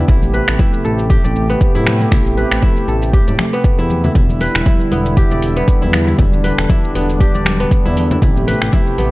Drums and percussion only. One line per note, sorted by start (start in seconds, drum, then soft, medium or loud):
0.08 kick loud
0.08 low conga loud
0.08 shaker loud
0.22 high conga medium
0.22 shaker medium
0.34 muted conga medium
0.34 shaker medium
0.48 finger snap medium
0.48 shaker medium
0.59 kick loud
0.59 high conga loud
0.59 shaker medium
0.73 shaker medium
0.85 muted conga soft
0.85 shaker medium
0.99 shaker medium
1.10 kick loud
1.10 shaker medium
1.24 muted conga soft
1.24 shaker medium
1.36 shaker medium
1.50 shaker medium
1.61 kick loud
1.61 muted conga soft
1.61 shaker medium
1.75 high conga medium
1.75 shaker medium
1.87 finger snap medium
1.87 high conga medium
1.87 shaker medium
2.00 muted conga soft
2.00 shaker medium
2.11 finger snap medium
2.11 kick loud
2.11 low conga loud
2.11 shaker medium
2.26 shaker medium
2.37 muted conga medium
2.37 shaker medium
2.52 finger snap medium
2.52 shaker medium
2.62 kick loud
2.62 high conga loud
2.62 shaker medium
2.77 shaker medium
2.88 muted conga soft
2.88 shaker medium
3.02 shaker medium
3.13 kick loud
3.13 shaker medium
3.28 muted conga soft
3.28 shaker medium
3.39 finger snap medium
3.39 high conga medium
3.39 shaker medium
3.53 shaker medium
3.64 kick loud
3.64 muted conga soft
3.64 high conga medium
3.64 shaker medium
3.79 shaker medium
3.90 high conga medium
3.90 shaker medium
4.04 muted conga soft
4.04 low conga medium
4.04 shaker medium
4.15 kick loud
4.15 closed hi-hat medium
4.15 low conga loud
4.15 shaker medium
4.29 high conga medium
4.29 shaker medium
4.40 open hi-hat medium
4.40 muted conga soft
4.40 shaker soft
4.55 finger snap medium
4.55 closed hi-hat soft
4.55 shaker medium
4.66 kick loud
4.66 closed hi-hat medium
4.66 high conga medium
4.66 shaker medium
4.81 shaker soft
4.92 open hi-hat medium
4.92 muted conga soft
4.92 shaker medium
5.06 closed hi-hat soft
5.06 shaker medium
5.17 kick loud
5.17 closed hi-hat medium
5.17 shaker soft
5.31 muted conga soft
5.31 shaker medium
5.42 open hi-hat medium
5.42 shaker medium
5.57 closed hi-hat soft
5.57 shaker medium
5.68 kick loud
5.68 closed hi-hat medium
5.68 muted conga soft
5.68 shaker medium
5.82 high conga medium
5.82 shaker medium
5.93 finger snap medium
5.93 open hi-hat medium
5.93 high conga medium
5.93 shaker medium
6.07 closed hi-hat soft
6.07 muted conga soft
6.07 shaker medium
6.19 kick loud
6.19 closed hi-hat medium
6.19 low conga loud
6.19 shaker medium
6.33 shaker soft
6.44 open hi-hat medium
6.44 muted conga soft
6.44 shaker soft
6.58 finger snap medium
6.58 closed hi-hat soft
6.58 shaker medium
6.69 kick loud
6.69 closed hi-hat medium
6.69 high conga loud
6.69 shaker soft
6.84 shaker soft
6.95 open hi-hat medium
6.95 muted conga soft
6.95 shaker soft
7.10 closed hi-hat soft
7.10 shaker medium
7.20 kick loud
7.20 closed hi-hat medium
7.20 shaker soft
7.35 muted conga medium
7.35 shaker medium
7.45 finger snap medium
7.45 open hi-hat medium
7.45 high conga medium
7.45 shaker soft
7.60 closed hi-hat soft
7.60 shaker soft
7.71 kick loud
7.71 closed hi-hat medium
7.71 muted conga soft
7.71 shaker medium
7.86 shaker soft
7.96 open hi-hat medium
7.96 high conga medium
7.96 shaker medium
8.11 closed hi-hat soft
8.11 muted conga medium
8.11 low conga loud
8.11 shaker soft
8.22 kick loud
8.22 closed hi-hat medium
8.22 low conga loud
8.22 shaker medium
8.37 high conga medium
8.37 shaker soft
8.48 open hi-hat medium
8.48 muted conga medium
8.48 shaker soft
8.62 finger snap medium
8.62 closed hi-hat soft
8.62 shaker medium
8.73 kick medium
8.73 closed hi-hat medium
8.73 high conga loud
8.73 shaker soft
8.87 shaker soft
8.98 open hi-hat medium
8.98 muted conga soft
8.98 shaker soft